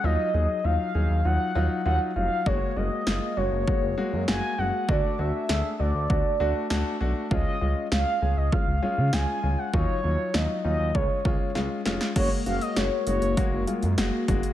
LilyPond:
<<
  \new Staff \with { instrumentName = "Soft synth lead" } { \time 4/4 \key fis \major \tempo 4 = 99 dis''4 eis''4 fis''4 fis''8 eis''8 | cis''8 dis''4 cis''4. gis''8 fis''8 | d''8 e''4 d''4. r4 | dis''4 eis''8. dis''16 eis''4 gis''8. fis''16 |
cis''4 dis''8 dis''8 cis''4 r4 | cis''8 eis''16 dis''16 cis''8 cis''4 r4. | }
  \new Staff \with { instrumentName = "Grand piano" } { \time 4/4 \key fis \major <fis dis' eis'>8 <fis dis' gis'>8 <fis dis' eis'>8 <fis dis' gis'>8 <fis dis' eis'>8 <fis dis' eis'>8 <fis dis' eis'>8 <fis dis' eis'>8 | <gis ais fis'>8 <gis ais fis'>8 <gis ais eis'>8 <gis ais fis'>8 <gis ais fis'>8 <gis ais fis'>8 <gis ais fis'>8 <gis ais fis'>8 | <a d' fis'>8 <a d' fis'>8 <a d' gis'>8 <a d' fis'>8 <a d' fis'>8 <a d' fis'>8 <a d' fis'>8 <a d' fis'>8 | <gis cis' eis'>8 <gis cis' eis'>8 <gis cis' eis'>8 <gis cis' gis'>8 <gis cis' eis'>8 <gis cis' eis'>8 <gis cis' eis'>8 <gis cis' eis'>8 |
<fis dis' eis'>8 <fis dis' eis'>8 <fis dis' eis'>8 <fis dis' eis'>8 <gis cis' eis'>8 <gis cis' eis'>8 <gis cis' eis'>8 <gis cis' eis'>8 | <gis ais fis'>8 <gis ais fis'>8 <gis ais fis'>8 <gis ais fis'>8 <gis ais fis'>8 <gis ais eis'>8 <gis ais fis'>8 <gis ais fis'>8 | }
  \new Staff \with { instrumentName = "Analog synth pad" } { \time 4/4 \key fis \major r1 | r1 | r1 | r1 |
r1 | <gis ais fis'>1 | }
  \new Staff \with { instrumentName = "Analog synth bass" } { \clef bass \time 4/4 \key fis \major dis,16 r16 dis,16 r16 dis,16 r16 dis,16 dis,16 dis,16 r16 dis,16 r16 dis,16 r16 eis,,16 r16 | fis,,16 r16 fis,,16 r16 fis,,16 r16 fis,,16 fis,,16 r16 fis,,16 r16 fis,16 fis,,16 r16 fis,,16 r16 | d,16 r16 d,16 r16 d,16 r16 d,16 d,16 d,16 r16 d,16 r16 d,16 r16 b,,16 r16 | cis,16 r16 cis,16 r16 cis,16 r16 cis,16 cis,16 r16 cis,16 r16 cis16 cis,16 r16 cis,16 r16 |
dis,16 r16 dis,16 r16 dis,16 r16 dis,16 dis,16 cis,16 r16 cis,16 r16 cis,16 r16 eis,,16 r16 | fis,,16 r16 fis,,16 r16 fis,,16 r16 fis,,16 fis,,16 r16 fis,,16 r16 fis,16 fis,,16 r16 fis,,16 r16 | }
  \new DrumStaff \with { instrumentName = "Drums" } \drummode { \time 4/4 r4 r4 r4 r4 | bd4 sn4 bd4 sn4 | bd4 sn4 bd4 sn4 | bd4 sn4 bd4 sn4 |
bd4 sn4 bd8 bd8 sn8 sn16 sn16 | <cymc hh bd>8 hh16 hh16 <hh sn>8 hh16 hh16 <hh bd>8 hh16 hh16 <hh sn>8 <hh bd>16 hh16 | }
>>